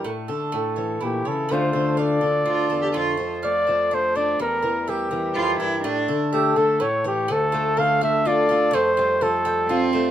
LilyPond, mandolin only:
\new Staff \with { instrumentName = "Mandolin" } { \time 3/4 \key d \minor \tempo 4 = 124 a8 a'8 a8 cis''8 e'8 cis''8 | a8 a'8 f''8 a'8 f'8 a'8 | a8 c''8 f''8 c''8 d'8 c''8 | g8 bes'8 e''8 bes'8 e'8 bes'8 |
a8 a'8 e''8 a'8 a8 cis''8 | a8 f'8 a'8 f''8 f'8 a'8 | a8 f'8 c''8 g''8 f'8 c''8 | }